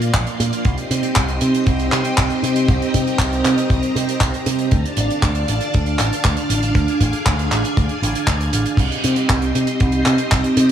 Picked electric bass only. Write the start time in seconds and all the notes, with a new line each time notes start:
Already playing: A#2
0.14 A#1
0.40 A#2
0.65 C2
0.91 C3
1.16 C2
1.41 C3
1.67 C2
1.92 C3
2.18 C2
2.43 C3
2.69 C2
2.94 C3
3.19 C2
3.45 C3
3.70 C2
3.96 C3
4.21 C2
4.46 C3
4.72 D2
4.97 A1
5.23 D2
5.48 A1
5.75 D2
5.99 A1
6.25 D2
6.50 A1
6.75 D2
7.01 A1
7.26 D2
7.51 A1
7.77 D2
8.02 A1
8.27 D2
8.53 A1
8.77 C2
9.04 C3
9.30 C2
9.55 C3
9.81 C2
10.06 C3
10.32 C2
10.57 C3